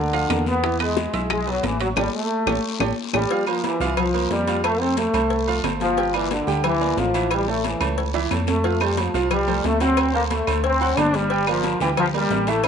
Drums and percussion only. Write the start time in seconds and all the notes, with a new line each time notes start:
0.14 high bongo, high conga, high timbale
0.30 high bongo, low bongo, high conga, high timbale, low timbale, short guiro, claves
0.46 high bongo, high conga, short guiro
0.64 high bongo, high timbale, long guiro
0.80 high conga, high timbale, claves
0.97 high bongo, high conga, low timbale, short guiro
1.13 high bongo, high timbale, short guiro
1.30 high bongo, high conga, low conga, high timbale, long guiro, claves
1.47 high bongo
1.63 high bongo, low bongo, high conga, high timbale, low timbale, short guiro
1.80 high bongo, high timbale, short guiro
1.96 low bongo, high conga, high timbale, long guiro, claves
2.47 low bongo, high conga, high timbale, long guiro, claves
2.80 low bongo, high conga, high timbale, claves
3.13 low bongo, high conga, high timbale, long guiro, claves
3.30 cowbell, high conga, long guiro
3.47 high conga, low agogo, claves
3.64 cowbell, high conga, low timbale, low agogo, short guiro
3.81 high conga, short guiro
3.97 cowbell, high conga, low conga, low agogo, long guiro, claves
4.14 low agogo
4.31 cowbell, high conga, low timbale, short guiro
4.47 cowbell, high conga, low agogo, short guiro
4.64 cowbell, high conga, low agogo, long guiro, claves
4.81 high conga
4.97 cowbell, high conga, low timbale, low agogo, short guiro
5.14 low agogo, short guiro, claves
5.30 cowbell, long guiro
5.47 high conga, low agogo
5.64 cowbell, high conga, low timbale, low agogo, short guiro, claves
5.80 cowbell, high conga, short guiro
5.97 cowbell, high conga, long guiro
6.14 high conga, low agogo, claves
6.31 cowbell, high conga, low timbale, low agogo, short guiro
6.47 short guiro
6.64 cowbell, high conga, low conga, low agogo, long guiro, claves
6.81 high conga, low agogo
6.97 cowbell, high conga, low timbale, short guiro
7.14 cowbell, low agogo, short guiro
7.31 cowbell, high conga, low agogo, long guiro, claves
7.48 high conga
7.64 cowbell, high conga, low timbale, low agogo, short guiro
7.81 high conga, low agogo, short guiro, claves
7.98 cowbell, high conga, long guiro
8.14 high conga, high timbale, low agogo
8.31 cowbell, high conga, low agogo, short guiro, claves
8.47 cowbell, high conga, low timbale, short guiro
8.64 cowbell, high conga, long guiro
8.81 low agogo, claves
8.97 cowbell, high conga, low timbale, low agogo, short guiro
9.14 short guiro
9.31 cowbell, high conga, low conga, low agogo, long guiro, claves
9.48 high conga, low conga, low agogo
9.64 cowbell, high conga, low timbale, short guiro
9.80 cowbell, high conga, low agogo, short guiro
9.97 cowbell, high conga, low agogo, long guiro, claves
10.14 high conga
10.30 cowbell, high conga, low timbale, low agogo, short guiro
10.47 high conga, low agogo, short guiro, claves
10.64 cowbell, high conga, long guiro
10.81 high conga, low agogo
10.97 cowbell, high conga, low timbale, low agogo, short guiro, claves
11.14 cowbell, high conga, short guiro
11.30 cowbell, long guiro
11.47 high conga, low agogo, claves
11.63 cowbell, high conga, low timbale, low agogo, short guiro
11.80 high conga, short guiro
11.97 cowbell, high conga, low conga, low agogo, long guiro, claves
12.14 high conga, low agogo
12.30 cowbell, high conga, low timbale, short guiro
12.47 cowbell, high conga, low agogo, short guiro
12.64 cowbell, low agogo, long guiro, claves